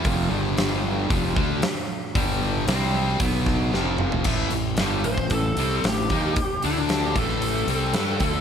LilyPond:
<<
  \new Staff \with { instrumentName = "Lead electric guitar" } { \time 4/4 \key a \minor \tempo 4 = 114 r1 | r1 | r4. c''8 a'4 g'4~ | g'8 e'16 d'8 g'16 a'2~ a'8 | }
  \new Staff \with { instrumentName = "Distorted electric guitar" } { \clef bass \time 4/4 \key a \minor <f, c f>8 <g, d g>4. <f, c f>8 <d a d'>8 r4 | <g, d g>4 <c g c'>4 <b, fis b>4 <f, c f>4 | <a, e a>8 <a, e>8 <g, d g>8 <a, e>8 <a, e>8 <c g c'>8 <a, e>8 <dis bes dis'>8 | r8 <d a d'>4 <a, e a>4 <c g c'>8 <g d' g'>8 <d a d'>8 | }
  \new Staff \with { instrumentName = "Fingered electric bass" } { \clef bass \time 4/4 \key a \minor f,,8 g,,4. f,,8 d,8 r4 | g,,4 c,4 b,,4 f,,4 | a,,8 a,,8 g,,8 a,,8 a,,8 c,8 a,,8 dis,8 | r8 d,4 a,,4 c,8 g,8 d,8 | }
  \new DrumStaff \with { instrumentName = "Drums" } \drummode { \time 4/4 <hho bd>4 <hho sn>4 <hho bd>8 bd8 <hho sn>4 | <hho bd>4 <hho sn>4 <hho bd>8 <bd sn>8 sn8 toml16 tomfh16 | <cymc bd>8 hho8 <hho sn>8 hho16 bd16 <hho bd>8 hho8 <hho sn>8 <hho bd>8 | <hho bd>8 hho8 <hho sn>8 <hho bd>16 sn16 hho8 hho8 <hho sn>8 <hho bd>8 | }
>>